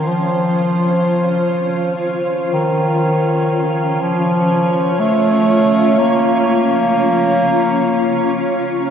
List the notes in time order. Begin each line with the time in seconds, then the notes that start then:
Already playing: C#4 F4 C5
0.08 F3
2.53 D#3
3.27 C#5
4.01 F3
4.99 A3
5.99 A#3